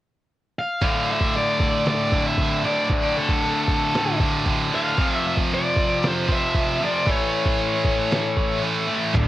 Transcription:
0.59 F5
0.81 D2 A2 D3, kick, crash
1.12 E5
1.21 kick
1.34 D5, crash
1.60 kick
1.86 D5, snare, crash
2.12 D2 A2 D3, kick
2.27 E5
2.38 D2 A2 D3, kick, crash
2.63 D2 A2 D3 D5
2.89 D2 A2 D3, kick, crash
3.17 A4
3.29 kick
3.43 crash
3.68 kick
3.94 snare, crash
4.20 D2 A2 D3, kick
4.46 D2 A2 D3, kick, crash
4.72 D2 A2 D3 F5
4.98 F2 C3 F3, kick, crash
5.13 E5
5.27 E5
5.37 kick
5.51 D5, crash
5.76 kick
6.03 snare, crash
6.07 C5
6.28 F2 C3 F3 E5, kick
6.54 F2 C3 F3, kick, crash
6.80 C3 F3
6.84 F2 D5
7.06 A2 E3 A3, kick, crash
7.10 C#5
7.45 kick
7.59 crash
7.84 kick
8.11 snare, crash
8.37 A2 E3 A3, kick
8.62 A2 E3 A3, crash
8.87 E3 A3
8.92 A2
9.15 D1 D2 A2 D3, kick, open hi-hat, crash

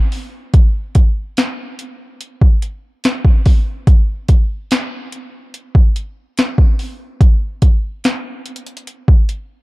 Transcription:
0.12 open hi-hat
0.54 kick, closed hi-hat
0.95 kick, closed hi-hat
1.37 snare, closed hi-hat
1.79 closed hi-hat
2.21 closed hi-hat
2.41 kick
2.62 closed hi-hat
3.04 snare, closed hi-hat
3.25 kick
3.46 kick, open hi-hat
3.87 kick, closed hi-hat
4.28 kick, closed hi-hat
4.71 snare, closed hi-hat
5.12 closed hi-hat
5.54 closed hi-hat
5.75 kick
5.96 closed hi-hat
6.37 snare, closed hi-hat
6.58 kick
6.79 open hi-hat
7.21 kick, closed hi-hat
7.62 kick, closed hi-hat
8.04 snare, closed hi-hat
8.46 closed hi-hat
8.56 closed hi-hat
8.66 closed hi-hat
8.77 closed hi-hat
8.87 closed hi-hat
9.08 kick
9.29 closed hi-hat

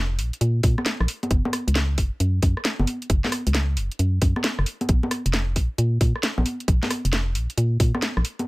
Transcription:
Already playing: F1
0.19 A#1, open hi-hat
0.33 closed hi-hat
0.41 A#2, closed hi-hat
0.63 A#2, kick, open hi-hat
0.78 cross-stick, high conga
0.86 snare, closed hi-hat
1.00 A#1, cross-stick
1.08 open hi-hat
1.23 closed hi-hat, high conga
1.31 F#1, kick, closed hi-hat
1.45 high conga
1.53 cross-stick, open hi-hat
1.68 C#2, closed hi-hat
1.75 snare, closed hi-hat
1.98 F#1, kick, open hi-hat
2.20 F#2, closed hi-hat
2.42 F#2, kick, open hi-hat
2.57 cross-stick
2.65 snare, closed hi-hat
2.79 F#1, high conga
2.87 open hi-hat
3.02 closed hi-hat
3.10 F#1, kick, closed hi-hat
3.24 snare, high conga
3.32 cross-stick, open hi-hat
3.47 C#2, closed hi-hat
3.54 snare, closed hi-hat
3.77 F#1, open hi-hat
3.91 closed hi-hat
3.99 F#2, closed hi-hat
4.22 F#2, kick, open hi-hat
4.36 cross-stick, high conga
4.44 snare, closed hi-hat
4.59 F#1, cross-stick
4.66 open hi-hat
4.81 closed hi-hat, high conga
4.89 A#1, kick, closed hi-hat
5.03 high conga
5.11 cross-stick, open hi-hat
5.26 F1, closed hi-hat
5.33 snare, closed hi-hat
5.56 A#1, kick, open hi-hat
5.78 A#2, closed hi-hat
6.01 A#2, kick, open hi-hat
6.16 cross-stick
6.23 snare, closed hi-hat
6.38 A#1, high conga
6.46 open hi-hat
6.60 closed hi-hat
6.68 A#1, kick, closed hi-hat
6.83 snare, high conga
6.90 cross-stick, open hi-hat
7.05 F1, closed hi-hat
7.13 snare, closed hi-hat
7.35 A#1, open hi-hat
7.50 closed hi-hat
7.58 A#2, closed hi-hat
7.80 A#2, kick, open hi-hat
7.95 cross-stick, high conga
8.02 snare, closed hi-hat
8.17 A#1, cross-stick
8.25 open hi-hat
8.39 closed hi-hat, high conga

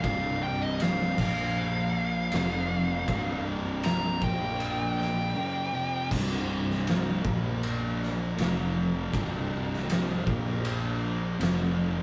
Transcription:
Already playing: G4
0.03 C1 C2 G2 C3 C5 F5, kick, ride bell
0.43 G5
0.62 D#5
0.80 F5, snare, ride bell
1.02 snare
1.18 A#1 A#2 F3 A#3 F5, kick, crash
2.31 F1 F2 C3 F3 C4 G4, snare, ride bell
3.08 C1 C2 G2 C3, kick, ride bell
3.83 A#5, snare, ride bell
4.21 A#1 A#2 F3 A#3 C5 G5, kick
4.60 ride bell
4.99 G5, snare
5.35 F#2 C#3 F#3
5.73 F2 C3 F3
6.11 C1 C2 G2 C3, kick, crash
6.71 snare
6.87 snare, ride bell
7.23 A#1 A#2 F3 A#3, kick
7.63 ride bell
8.03 snare
8.36 F1 F2 C3 F3 C4 G4, ride bell
8.41 snare
9.12 C1 C2 G2 C3 C5, kick, ride bell
9.73 snare
9.90 snare, ride bell
10.26 A#1 A#2 F3 A#3, kick
10.65 ride bell
11.38 F1 F2 C3 F3 C4 G4, ride bell
11.43 snare

